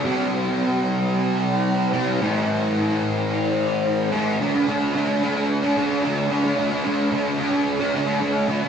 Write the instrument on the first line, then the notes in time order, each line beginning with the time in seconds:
distorted electric guitar
0.04 C3 G3 C4
1.93 C3 G3 C4
2.20 A2 E3 A3
4.12 A2 E3 A3
4.40 D3 A3 D4
4.53 A3 D4
4.67 D3 A3 D4
4.95 D3 A3 D4
5.22 D3 A3 D4
5.36 A3 D4
5.63 A3 D4
5.76 D3 A3 D4
5.89 A3 D4
6.02 D3 A3 D4
6.29 D3 A3 D4
6.43 A3 D4
6.56 D3 A3 D4
6.70 A3 D4
6.84 D3 A3 D4
7.11 D3 A3 D4
7.38 D3 A3 D4
7.51 A3 D4
7.79 A3 D4
7.93 D3 A3 D4
8.06 A3 D4
8.20 D3 A3 D4
8.47 D3 A3 D4
8.62 A3 D4